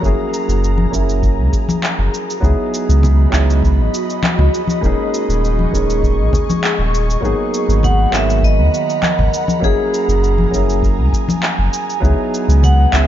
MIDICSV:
0, 0, Header, 1, 6, 480
1, 0, Start_track
1, 0, Tempo, 600000
1, 26, Time_signature, 4, 2, 24, 8
1, 10456, End_track
2, 0, Start_track
2, 0, Title_t, "Ambient pad"
2, 0, Program_c, 0, 92
2, 0, Note_on_c, 0, 82, 79
2, 18, Note_on_c, 0, 68, 70
2, 1913, Note_off_c, 0, 82, 0
2, 1923, Note_off_c, 0, 68, 0
2, 1940, Note_on_c, 0, 83, 77
2, 1941, Note_on_c, 0, 75, 64
2, 1942, Note_on_c, 0, 66, 74
2, 3844, Note_off_c, 0, 83, 0
2, 3845, Note_off_c, 0, 66, 0
2, 3869, Note_on_c, 0, 85, 81
2, 3872, Note_on_c, 0, 68, 71
2, 5752, Note_off_c, 0, 75, 0
2, 5768, Note_off_c, 0, 85, 0
2, 5770, Note_off_c, 0, 68, 0
2, 5784, Note_on_c, 0, 83, 82
2, 5788, Note_on_c, 0, 78, 67
2, 5788, Note_on_c, 0, 82, 72
2, 7686, Note_off_c, 0, 83, 0
2, 7688, Note_off_c, 0, 78, 0
2, 7714, Note_on_c, 0, 80, 66
2, 9595, Note_off_c, 0, 82, 0
2, 9611, Note_off_c, 0, 80, 0
2, 9624, Note_on_c, 0, 71, 73
2, 9625, Note_on_c, 0, 87, 69
2, 9626, Note_on_c, 0, 78, 71
2, 10456, Note_off_c, 0, 71, 0
2, 10456, Note_off_c, 0, 78, 0
2, 10456, Note_off_c, 0, 87, 0
2, 10456, End_track
3, 0, Start_track
3, 0, Title_t, "Vibraphone"
3, 0, Program_c, 1, 11
3, 6274, Note_on_c, 1, 78, 98
3, 6494, Note_off_c, 1, 78, 0
3, 6516, Note_on_c, 1, 76, 99
3, 6755, Note_on_c, 1, 75, 101
3, 6758, Note_off_c, 1, 76, 0
3, 7679, Note_off_c, 1, 75, 0
3, 7713, Note_on_c, 1, 68, 81
3, 8638, Note_off_c, 1, 68, 0
3, 10111, Note_on_c, 1, 78, 104
3, 10332, Note_off_c, 1, 78, 0
3, 10344, Note_on_c, 1, 76, 97
3, 10456, Note_off_c, 1, 76, 0
3, 10456, End_track
4, 0, Start_track
4, 0, Title_t, "Grand piano"
4, 0, Program_c, 2, 0
4, 0, Control_c, 2, 64, 127
4, 6, Note_on_c, 2, 54, 79
4, 15, Note_on_c, 2, 58, 75
4, 26, Note_on_c, 2, 61, 71
4, 34, Note_on_c, 2, 64, 73
4, 35, Control_c, 2, 64, 0
4, 43, Note_on_c, 2, 68, 88
4, 199, Control_c, 2, 64, 127
4, 708, Note_off_c, 2, 54, 0
4, 713, Note_off_c, 2, 58, 0
4, 718, Note_off_c, 2, 61, 0
4, 722, Note_off_c, 2, 64, 0
4, 724, Note_on_c, 2, 54, 66
4, 727, Note_off_c, 2, 68, 0
4, 734, Note_on_c, 2, 58, 59
4, 743, Note_on_c, 2, 61, 65
4, 753, Note_on_c, 2, 64, 60
4, 763, Note_on_c, 2, 68, 70
4, 1907, Note_off_c, 2, 54, 0
4, 1913, Note_off_c, 2, 58, 0
4, 1917, Note_off_c, 2, 61, 0
4, 1921, Note_on_c, 2, 54, 83
4, 1922, Note_off_c, 2, 64, 0
4, 1927, Note_off_c, 2, 68, 0
4, 1929, Note_on_c, 2, 59, 78
4, 1938, Note_on_c, 2, 63, 70
4, 1949, Note_on_c, 2, 64, 73
4, 1954, Note_on_c, 2, 68, 90
4, 1958, Control_c, 2, 64, 0
4, 2080, Control_c, 2, 64, 127
4, 2626, Note_off_c, 2, 54, 0
4, 2630, Note_off_c, 2, 59, 0
4, 2635, Note_off_c, 2, 63, 0
4, 2638, Note_on_c, 2, 54, 72
4, 2640, Note_off_c, 2, 64, 0
4, 2642, Note_off_c, 2, 68, 0
4, 2647, Note_on_c, 2, 59, 60
4, 2656, Note_on_c, 2, 63, 63
4, 2665, Note_on_c, 2, 64, 64
4, 2673, Note_on_c, 2, 68, 79
4, 3824, Note_off_c, 2, 54, 0
4, 3829, Note_off_c, 2, 59, 0
4, 3834, Note_off_c, 2, 63, 0
4, 3838, Note_off_c, 2, 64, 0
4, 3842, Note_off_c, 2, 68, 0
4, 3849, Note_on_c, 2, 56, 81
4, 3858, Note_on_c, 2, 58, 76
4, 3869, Note_on_c, 2, 61, 76
4, 3876, Control_c, 2, 64, 0
4, 3876, Note_on_c, 2, 63, 80
4, 3886, Note_on_c, 2, 68, 91
4, 4005, Control_c, 2, 64, 127
4, 4550, Note_off_c, 2, 56, 0
4, 4554, Note_off_c, 2, 58, 0
4, 4560, Note_off_c, 2, 61, 0
4, 4564, Note_off_c, 2, 63, 0
4, 4568, Note_off_c, 2, 68, 0
4, 4571, Note_on_c, 2, 56, 69
4, 4580, Note_on_c, 2, 58, 58
4, 4589, Note_on_c, 2, 61, 62
4, 4598, Note_on_c, 2, 63, 60
4, 4608, Note_on_c, 2, 68, 72
4, 5751, Note_off_c, 2, 56, 0
4, 5755, Note_off_c, 2, 58, 0
4, 5760, Note_off_c, 2, 61, 0
4, 5763, Note_on_c, 2, 54, 80
4, 5764, Note_off_c, 2, 63, 0
4, 5769, Note_off_c, 2, 68, 0
4, 5773, Note_on_c, 2, 58, 76
4, 5782, Note_on_c, 2, 59, 71
4, 5791, Note_on_c, 2, 63, 77
4, 5795, Control_c, 2, 64, 0
4, 5801, Note_on_c, 2, 68, 92
4, 5919, Control_c, 2, 64, 127
4, 6467, Note_off_c, 2, 54, 0
4, 6472, Note_off_c, 2, 58, 0
4, 6477, Note_off_c, 2, 59, 0
4, 6481, Note_off_c, 2, 63, 0
4, 6484, Note_on_c, 2, 54, 71
4, 6486, Note_off_c, 2, 68, 0
4, 6494, Note_on_c, 2, 58, 59
4, 6500, Note_on_c, 2, 59, 62
4, 6511, Note_on_c, 2, 51, 65
4, 6521, Note_on_c, 2, 68, 72
4, 7667, Note_off_c, 2, 54, 0
4, 7673, Note_off_c, 2, 58, 0
4, 7675, Note_off_c, 2, 59, 0
4, 7680, Note_on_c, 2, 54, 83
4, 7681, Note_off_c, 2, 51, 0
4, 7686, Note_off_c, 2, 68, 0
4, 7689, Note_on_c, 2, 58, 81
4, 7700, Note_on_c, 2, 61, 79
4, 7707, Note_on_c, 2, 64, 75
4, 7715, Control_c, 2, 64, 0
4, 7717, Note_on_c, 2, 68, 94
4, 7868, Control_c, 2, 64, 127
4, 8385, Note_off_c, 2, 54, 0
4, 8390, Note_off_c, 2, 58, 0
4, 8395, Note_off_c, 2, 61, 0
4, 8399, Note_off_c, 2, 64, 0
4, 8404, Note_off_c, 2, 68, 0
4, 8406, Note_on_c, 2, 54, 69
4, 8414, Note_on_c, 2, 58, 62
4, 8424, Note_on_c, 2, 61, 62
4, 8434, Note_on_c, 2, 64, 64
4, 8444, Note_on_c, 2, 68, 77
4, 9588, Note_off_c, 2, 54, 0
4, 9593, Note_off_c, 2, 58, 0
4, 9598, Note_off_c, 2, 61, 0
4, 9602, Note_off_c, 2, 64, 0
4, 9602, Note_on_c, 2, 54, 86
4, 9607, Note_off_c, 2, 68, 0
4, 9612, Note_on_c, 2, 59, 82
4, 9620, Note_on_c, 2, 63, 75
4, 9628, Note_on_c, 2, 64, 80
4, 9638, Control_c, 2, 64, 0
4, 9639, Note_on_c, 2, 68, 88
4, 9758, Control_c, 2, 64, 127
4, 10307, Note_off_c, 2, 54, 0
4, 10312, Note_off_c, 2, 59, 0
4, 10316, Note_off_c, 2, 63, 0
4, 10319, Note_off_c, 2, 64, 0
4, 10325, Note_off_c, 2, 68, 0
4, 10331, Note_on_c, 2, 54, 71
4, 10340, Note_on_c, 2, 59, 68
4, 10348, Note_on_c, 2, 61, 65
4, 10356, Note_on_c, 2, 64, 61
4, 10365, Note_on_c, 2, 68, 76
4, 10456, Note_off_c, 2, 54, 0
4, 10456, Note_off_c, 2, 59, 0
4, 10456, Note_off_c, 2, 61, 0
4, 10456, Note_off_c, 2, 64, 0
4, 10456, Note_off_c, 2, 68, 0
4, 10456, End_track
5, 0, Start_track
5, 0, Title_t, "Sub bass"
5, 0, Program_c, 3, 38
5, 26, Note_on_c, 3, 30, 98
5, 115, Note_off_c, 3, 30, 0
5, 388, Note_on_c, 3, 30, 98
5, 692, Note_off_c, 3, 30, 0
5, 744, Note_on_c, 3, 30, 81
5, 1111, Note_on_c, 3, 37, 91
5, 1123, Note_off_c, 3, 30, 0
5, 1194, Note_off_c, 3, 37, 0
5, 1589, Note_on_c, 3, 30, 90
5, 1672, Note_off_c, 3, 30, 0
5, 1942, Note_on_c, 3, 37, 96
5, 2033, Note_off_c, 3, 37, 0
5, 2311, Note_on_c, 3, 37, 104
5, 2614, Note_off_c, 3, 37, 0
5, 2662, Note_on_c, 3, 37, 81
5, 3027, Note_on_c, 3, 32, 93
5, 3039, Note_off_c, 3, 37, 0
5, 3111, Note_off_c, 3, 32, 0
5, 3506, Note_on_c, 3, 37, 90
5, 3591, Note_off_c, 3, 37, 0
5, 3864, Note_on_c, 3, 27, 94
5, 3954, Note_off_c, 3, 27, 0
5, 4230, Note_on_c, 3, 27, 102
5, 4533, Note_off_c, 3, 27, 0
5, 4585, Note_on_c, 3, 27, 80
5, 4952, Note_on_c, 3, 34, 93
5, 4964, Note_off_c, 3, 27, 0
5, 5034, Note_off_c, 3, 34, 0
5, 5429, Note_on_c, 3, 27, 88
5, 5733, Note_off_c, 3, 27, 0
5, 5784, Note_on_c, 3, 32, 93
5, 5874, Note_off_c, 3, 32, 0
5, 6147, Note_on_c, 3, 32, 103
5, 6452, Note_off_c, 3, 32, 0
5, 6503, Note_on_c, 3, 32, 85
5, 6867, Note_on_c, 3, 39, 98
5, 6879, Note_off_c, 3, 32, 0
5, 6952, Note_off_c, 3, 39, 0
5, 7350, Note_on_c, 3, 32, 100
5, 7433, Note_off_c, 3, 32, 0
5, 7701, Note_on_c, 3, 30, 89
5, 7793, Note_off_c, 3, 30, 0
5, 8067, Note_on_c, 3, 30, 105
5, 8371, Note_off_c, 3, 30, 0
5, 8421, Note_on_c, 3, 30, 78
5, 8787, Note_on_c, 3, 37, 93
5, 8799, Note_off_c, 3, 30, 0
5, 8871, Note_off_c, 3, 37, 0
5, 9268, Note_on_c, 3, 30, 92
5, 9352, Note_off_c, 3, 30, 0
5, 9622, Note_on_c, 3, 37, 95
5, 9713, Note_off_c, 3, 37, 0
5, 9986, Note_on_c, 3, 37, 110
5, 10291, Note_off_c, 3, 37, 0
5, 10343, Note_on_c, 3, 37, 78
5, 10456, Note_off_c, 3, 37, 0
5, 10456, End_track
6, 0, Start_track
6, 0, Title_t, "Drums"
6, 26, Note_on_c, 9, 36, 108
6, 34, Note_on_c, 9, 69, 33
6, 106, Note_off_c, 9, 36, 0
6, 114, Note_off_c, 9, 69, 0
6, 270, Note_on_c, 9, 69, 79
6, 350, Note_off_c, 9, 69, 0
6, 395, Note_on_c, 9, 69, 42
6, 475, Note_off_c, 9, 69, 0
6, 512, Note_on_c, 9, 69, 30
6, 592, Note_off_c, 9, 69, 0
6, 622, Note_on_c, 9, 63, 65
6, 702, Note_off_c, 9, 63, 0
6, 744, Note_on_c, 9, 36, 63
6, 750, Note_on_c, 9, 69, 77
6, 824, Note_off_c, 9, 36, 0
6, 830, Note_off_c, 9, 69, 0
6, 875, Note_on_c, 9, 69, 41
6, 955, Note_off_c, 9, 69, 0
6, 984, Note_on_c, 9, 36, 121
6, 987, Note_on_c, 9, 69, 30
6, 1064, Note_off_c, 9, 36, 0
6, 1067, Note_off_c, 9, 69, 0
6, 1224, Note_on_c, 9, 36, 103
6, 1227, Note_on_c, 9, 69, 71
6, 1304, Note_off_c, 9, 36, 0
6, 1307, Note_off_c, 9, 69, 0
6, 1349, Note_on_c, 9, 63, 85
6, 1357, Note_on_c, 9, 69, 45
6, 1429, Note_off_c, 9, 63, 0
6, 1437, Note_off_c, 9, 69, 0
6, 1469, Note_on_c, 9, 39, 73
6, 1475, Note_on_c, 9, 69, 33
6, 1549, Note_off_c, 9, 39, 0
6, 1555, Note_off_c, 9, 69, 0
6, 1714, Note_on_c, 9, 69, 73
6, 1794, Note_off_c, 9, 69, 0
6, 1842, Note_on_c, 9, 69, 44
6, 1922, Note_off_c, 9, 69, 0
6, 1942, Note_on_c, 9, 36, 112
6, 1953, Note_on_c, 9, 69, 32
6, 2022, Note_off_c, 9, 36, 0
6, 2033, Note_off_c, 9, 69, 0
6, 2193, Note_on_c, 9, 69, 79
6, 2273, Note_off_c, 9, 69, 0
6, 2318, Note_on_c, 9, 69, 39
6, 2398, Note_off_c, 9, 69, 0
6, 2425, Note_on_c, 9, 64, 78
6, 2435, Note_on_c, 9, 69, 34
6, 2505, Note_off_c, 9, 64, 0
6, 2515, Note_off_c, 9, 69, 0
6, 2662, Note_on_c, 9, 36, 63
6, 2666, Note_on_c, 9, 39, 77
6, 2673, Note_on_c, 9, 69, 75
6, 2742, Note_off_c, 9, 36, 0
6, 2746, Note_off_c, 9, 39, 0
6, 2753, Note_off_c, 9, 69, 0
6, 2802, Note_on_c, 9, 69, 44
6, 2882, Note_off_c, 9, 69, 0
6, 2902, Note_on_c, 9, 36, 115
6, 2917, Note_on_c, 9, 69, 32
6, 2982, Note_off_c, 9, 36, 0
6, 2997, Note_off_c, 9, 69, 0
6, 3154, Note_on_c, 9, 69, 78
6, 3234, Note_off_c, 9, 69, 0
6, 3280, Note_on_c, 9, 69, 47
6, 3360, Note_off_c, 9, 69, 0
6, 3382, Note_on_c, 9, 63, 92
6, 3391, Note_on_c, 9, 39, 74
6, 3397, Note_on_c, 9, 69, 33
6, 3462, Note_off_c, 9, 63, 0
6, 3471, Note_off_c, 9, 39, 0
6, 3477, Note_off_c, 9, 69, 0
6, 3511, Note_on_c, 9, 64, 75
6, 3591, Note_off_c, 9, 64, 0
6, 3636, Note_on_c, 9, 69, 75
6, 3716, Note_off_c, 9, 69, 0
6, 3740, Note_on_c, 9, 63, 82
6, 3758, Note_on_c, 9, 69, 44
6, 3820, Note_off_c, 9, 63, 0
6, 3838, Note_off_c, 9, 69, 0
6, 3864, Note_on_c, 9, 36, 117
6, 3871, Note_on_c, 9, 69, 34
6, 3944, Note_off_c, 9, 36, 0
6, 3951, Note_off_c, 9, 69, 0
6, 4114, Note_on_c, 9, 69, 78
6, 4194, Note_off_c, 9, 69, 0
6, 4240, Note_on_c, 9, 69, 41
6, 4320, Note_off_c, 9, 69, 0
6, 4357, Note_on_c, 9, 69, 29
6, 4437, Note_off_c, 9, 69, 0
6, 4472, Note_on_c, 9, 63, 59
6, 4552, Note_off_c, 9, 63, 0
6, 4584, Note_on_c, 9, 36, 63
6, 4597, Note_on_c, 9, 69, 77
6, 4664, Note_off_c, 9, 36, 0
6, 4677, Note_off_c, 9, 69, 0
6, 4720, Note_on_c, 9, 69, 42
6, 4800, Note_off_c, 9, 69, 0
6, 4825, Note_on_c, 9, 36, 116
6, 4834, Note_on_c, 9, 69, 30
6, 4905, Note_off_c, 9, 36, 0
6, 4914, Note_off_c, 9, 69, 0
6, 5063, Note_on_c, 9, 64, 80
6, 5064, Note_on_c, 9, 36, 94
6, 5077, Note_on_c, 9, 69, 70
6, 5143, Note_off_c, 9, 64, 0
6, 5144, Note_off_c, 9, 36, 0
6, 5157, Note_off_c, 9, 69, 0
6, 5198, Note_on_c, 9, 63, 88
6, 5198, Note_on_c, 9, 69, 44
6, 5278, Note_off_c, 9, 63, 0
6, 5278, Note_off_c, 9, 69, 0
6, 5312, Note_on_c, 9, 39, 72
6, 5318, Note_on_c, 9, 69, 33
6, 5392, Note_off_c, 9, 39, 0
6, 5398, Note_off_c, 9, 69, 0
6, 5557, Note_on_c, 9, 69, 73
6, 5637, Note_off_c, 9, 69, 0
6, 5682, Note_on_c, 9, 69, 46
6, 5762, Note_off_c, 9, 69, 0
6, 5783, Note_on_c, 9, 36, 112
6, 5798, Note_on_c, 9, 69, 30
6, 5863, Note_off_c, 9, 36, 0
6, 5878, Note_off_c, 9, 69, 0
6, 6033, Note_on_c, 9, 69, 80
6, 6113, Note_off_c, 9, 69, 0
6, 6158, Note_on_c, 9, 69, 41
6, 6238, Note_off_c, 9, 69, 0
6, 6265, Note_on_c, 9, 64, 70
6, 6276, Note_on_c, 9, 69, 29
6, 6345, Note_off_c, 9, 64, 0
6, 6356, Note_off_c, 9, 69, 0
6, 6503, Note_on_c, 9, 36, 59
6, 6508, Note_on_c, 9, 39, 73
6, 6514, Note_on_c, 9, 69, 74
6, 6583, Note_off_c, 9, 36, 0
6, 6588, Note_off_c, 9, 39, 0
6, 6594, Note_off_c, 9, 69, 0
6, 6639, Note_on_c, 9, 69, 41
6, 6719, Note_off_c, 9, 69, 0
6, 6743, Note_on_c, 9, 36, 114
6, 6756, Note_on_c, 9, 69, 31
6, 6823, Note_off_c, 9, 36, 0
6, 6836, Note_off_c, 9, 69, 0
6, 6994, Note_on_c, 9, 69, 71
6, 7074, Note_off_c, 9, 69, 0
6, 7118, Note_on_c, 9, 69, 42
6, 7198, Note_off_c, 9, 69, 0
6, 7222, Note_on_c, 9, 63, 81
6, 7225, Note_on_c, 9, 39, 71
6, 7231, Note_on_c, 9, 69, 30
6, 7302, Note_off_c, 9, 63, 0
6, 7305, Note_off_c, 9, 39, 0
6, 7311, Note_off_c, 9, 69, 0
6, 7351, Note_on_c, 9, 64, 64
6, 7431, Note_off_c, 9, 64, 0
6, 7470, Note_on_c, 9, 69, 71
6, 7550, Note_off_c, 9, 69, 0
6, 7585, Note_on_c, 9, 63, 85
6, 7596, Note_on_c, 9, 69, 44
6, 7665, Note_off_c, 9, 63, 0
6, 7676, Note_off_c, 9, 69, 0
6, 7701, Note_on_c, 9, 36, 108
6, 7709, Note_on_c, 9, 69, 32
6, 7781, Note_off_c, 9, 36, 0
6, 7789, Note_off_c, 9, 69, 0
6, 7953, Note_on_c, 9, 69, 74
6, 8033, Note_off_c, 9, 69, 0
6, 8075, Note_on_c, 9, 69, 40
6, 8155, Note_off_c, 9, 69, 0
6, 8191, Note_on_c, 9, 69, 30
6, 8271, Note_off_c, 9, 69, 0
6, 8306, Note_on_c, 9, 63, 65
6, 8386, Note_off_c, 9, 63, 0
6, 8421, Note_on_c, 9, 36, 59
6, 8432, Note_on_c, 9, 69, 71
6, 8501, Note_off_c, 9, 36, 0
6, 8512, Note_off_c, 9, 69, 0
6, 8557, Note_on_c, 9, 69, 40
6, 8637, Note_off_c, 9, 69, 0
6, 8662, Note_on_c, 9, 36, 100
6, 8673, Note_on_c, 9, 69, 30
6, 8742, Note_off_c, 9, 36, 0
6, 8753, Note_off_c, 9, 69, 0
6, 8902, Note_on_c, 9, 36, 90
6, 8912, Note_on_c, 9, 69, 74
6, 8982, Note_off_c, 9, 36, 0
6, 8992, Note_off_c, 9, 69, 0
6, 9028, Note_on_c, 9, 63, 85
6, 9039, Note_on_c, 9, 69, 43
6, 9108, Note_off_c, 9, 63, 0
6, 9119, Note_off_c, 9, 69, 0
6, 9144, Note_on_c, 9, 39, 74
6, 9150, Note_on_c, 9, 69, 30
6, 9224, Note_off_c, 9, 39, 0
6, 9230, Note_off_c, 9, 69, 0
6, 9388, Note_on_c, 9, 69, 71
6, 9468, Note_off_c, 9, 69, 0
6, 9518, Note_on_c, 9, 69, 42
6, 9598, Note_off_c, 9, 69, 0
6, 9622, Note_on_c, 9, 36, 101
6, 9635, Note_on_c, 9, 69, 31
6, 9702, Note_off_c, 9, 36, 0
6, 9715, Note_off_c, 9, 69, 0
6, 9874, Note_on_c, 9, 69, 76
6, 9954, Note_off_c, 9, 69, 0
6, 9998, Note_on_c, 9, 69, 39
6, 10078, Note_off_c, 9, 69, 0
6, 10106, Note_on_c, 9, 64, 86
6, 10116, Note_on_c, 9, 69, 29
6, 10186, Note_off_c, 9, 64, 0
6, 10196, Note_off_c, 9, 69, 0
6, 10343, Note_on_c, 9, 36, 58
6, 10348, Note_on_c, 9, 39, 76
6, 10354, Note_on_c, 9, 69, 75
6, 10423, Note_off_c, 9, 36, 0
6, 10428, Note_off_c, 9, 39, 0
6, 10434, Note_off_c, 9, 69, 0
6, 10456, End_track
0, 0, End_of_file